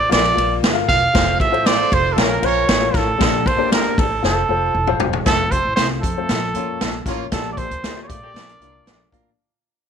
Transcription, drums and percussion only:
0.12 snare loud
0.12 ride medium
0.26 ride soft
0.38 ride medium
0.64 snare loud
0.64 ride medium
0.89 kick loud
0.89 snare soft
0.89 ride medium
1.15 kick loud
1.15 snare loud
1.15 ride medium
1.40 kick loud
1.40 ride medium
1.54 ride soft
1.66 snare loud
1.66 ride medium
1.92 kick loud
1.92 ride medium
2.18 snare loud
2.18 ride medium
2.43 ride medium
2.69 snare loud
2.69 ride medium
2.94 kick loud
2.94 snare soft
2.94 ride medium
3.21 kick loud
3.21 snare loud
3.21 ride medium
3.46 kick medium
3.46 ride medium
3.72 snare loud
3.72 ride loud
3.98 kick loud
3.98 ride medium
4.24 snare medium
4.87 mid tom medium
5.00 floor tom loud
5.13 floor tom loud
5.26 kick loud
5.26 snare loud
5.26 closed hi-hat medium
5.51 kick medium
5.51 closed hi-hat medium
5.77 snare loud
5.77 closed hi-hat loud
6.03 kick loud
6.03 closed hi-hat medium
6.29 snare loud
6.29 closed hi-hat medium
6.55 closed hi-hat medium
6.81 snare loud
6.81 closed hi-hat loud
7.06 kick medium
7.06 snare soft
7.06 closed hi-hat medium
7.32 kick loud
7.32 snare loud
7.32 closed hi-hat loud
7.57 kick loud
7.57 closed hi-hat medium
7.71 closed hi-hat soft
7.84 snare loud
7.84 closed hi-hat loud
8.10 kick loud
8.10 closed hi-hat medium
8.36 snare loud
8.36 closed hi-hat medium
8.49 closed hi-hat soft
8.62 closed hi-hat medium
8.87 snare loud
8.87 closed hi-hat medium
9.12 kick medium
9.12 closed hi-hat medium

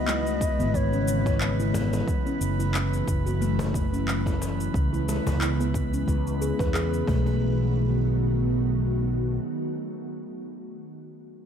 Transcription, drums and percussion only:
0.08 clap medium
0.08 shaker soft
0.27 shaker soft
0.41 kick loud
0.41 shaker medium
0.60 shaker soft
0.74 kick medium
0.74 shaker soft
0.93 shaker soft
1.08 shaker medium
1.26 kick loud
1.26 cajon slap medium
1.26 shaker soft
1.41 clap loud
1.41 shaker soft
1.60 shaker soft
1.74 cajon bass medium
1.74 shaker medium
1.93 cajon slap medium
1.93 shaker soft
2.08 kick loud
2.08 shaker soft
2.27 shaker soft
2.41 shaker medium
2.60 shaker soft
2.74 clap medium
2.74 shaker soft
2.93 shaker soft
3.08 kick loud
3.08 shaker medium
3.27 shaker soft
3.42 shaker soft
3.59 cajon bass medium
3.59 cajon slap medium
3.59 shaker soft
3.74 kick loud
3.74 shaker medium
3.94 shaker soft
4.08 clap medium
4.08 shaker soft
4.26 kick medium
4.26 cajon slap medium
4.26 shaker soft
4.42 cajon slap medium
4.42 shaker medium
4.60 shaker soft
4.74 kick loud
4.74 shaker soft
4.94 shaker soft
5.09 cajon slap medium
5.09 shaker medium
5.27 cajon bass medium
5.27 shaker soft
5.41 clap medium
5.41 shaker soft
5.60 shaker soft
5.74 kick loud
5.74 shaker medium
5.94 shaker soft
6.08 kick medium
6.08 shaker soft
6.27 shaker soft
6.42 shaker medium
6.59 kick loud
6.59 cajon slap medium
6.59 shaker soft
6.74 cajon slap medium
6.74 clap medium
6.74 shaker soft
6.94 shaker soft
7.08 kick loud
7.08 cajon bass medium
7.26 cajon slap soft

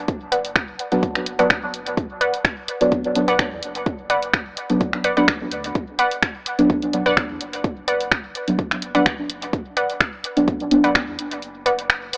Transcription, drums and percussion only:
0.08 kick loud
0.08 closed hi-hat soft
0.32 closed hi-hat medium
0.45 closed hi-hat soft
0.56 finger snap medium
0.56 kick loud
0.56 closed hi-hat soft
0.79 closed hi-hat medium
0.92 closed hi-hat soft
1.03 kick loud
1.03 closed hi-hat soft
1.15 finger snap soft
1.15 closed hi-hat soft
1.26 closed hi-hat medium
1.39 closed hi-hat soft
1.50 finger snap medium
1.50 kick loud
1.50 closed hi-hat soft
1.74 closed hi-hat medium
1.86 closed hi-hat soft
1.97 kick loud
1.97 closed hi-hat soft
2.21 closed hi-hat medium
2.34 closed hi-hat soft
2.45 finger snap medium
2.45 kick loud
2.45 closed hi-hat soft
2.68 closed hi-hat medium
2.81 closed hi-hat soft
2.92 kick loud
2.92 closed hi-hat soft
3.04 closed hi-hat soft
3.15 closed hi-hat medium
3.28 closed hi-hat soft
3.39 finger snap medium
3.39 kick loud
3.39 closed hi-hat soft
3.63 closed hi-hat medium
3.75 closed hi-hat soft
3.86 kick loud
3.86 closed hi-hat soft
4.10 closed hi-hat medium
4.23 closed hi-hat soft
4.34 finger snap medium
4.34 kick loud
4.34 closed hi-hat soft
4.57 closed hi-hat medium
4.70 closed hi-hat soft
4.81 kick loud
4.81 closed hi-hat soft
4.93 finger snap soft
4.93 closed hi-hat soft
5.04 closed hi-hat medium
5.17 closed hi-hat soft
5.28 finger snap medium
5.28 kick loud
5.28 closed hi-hat soft
5.51 closed hi-hat medium
5.64 closed hi-hat soft
5.75 kick loud
5.75 closed hi-hat soft
5.99 closed hi-hat medium
6.11 closed hi-hat soft
6.23 finger snap medium
6.23 kick loud
6.23 closed hi-hat soft
6.46 closed hi-hat medium
6.59 closed hi-hat soft
6.70 kick loud
6.70 closed hi-hat soft
6.82 closed hi-hat soft
6.93 closed hi-hat medium
7.06 closed hi-hat soft
7.17 finger snap medium
7.17 kick loud
7.17 closed hi-hat soft
7.41 closed hi-hat medium
7.53 closed hi-hat soft
7.64 kick loud
7.64 closed hi-hat soft
7.88 closed hi-hat medium
8.01 closed hi-hat soft
8.11 finger snap medium
8.11 kick loud
8.11 closed hi-hat soft
8.35 closed hi-hat medium
8.48 closed hi-hat soft
8.59 kick loud
8.59 closed hi-hat soft
8.71 finger snap soft
8.71 closed hi-hat soft
8.82 closed hi-hat medium
8.95 closed hi-hat soft
9.06 finger snap medium
9.06 kick loud
9.06 closed hi-hat soft
9.30 closed hi-hat medium
9.42 closed hi-hat soft
9.53 kick loud
9.53 closed hi-hat soft
9.77 closed hi-hat medium
9.90 closed hi-hat soft
10.00 finger snap medium
10.00 kick medium
10.00 closed hi-hat soft
10.24 closed hi-hat medium
10.37 closed hi-hat soft
10.48 kick loud
10.48 closed hi-hat soft
10.60 closed hi-hat soft
10.71 closed hi-hat medium
10.84 closed hi-hat soft
10.95 finger snap medium
10.95 kick loud
10.95 closed hi-hat soft
11.19 closed hi-hat medium
11.31 closed hi-hat soft
11.42 closed hi-hat soft
11.66 closed hi-hat medium
11.79 closed hi-hat soft
11.90 finger snap medium
11.90 closed hi-hat soft
12.13 closed hi-hat medium

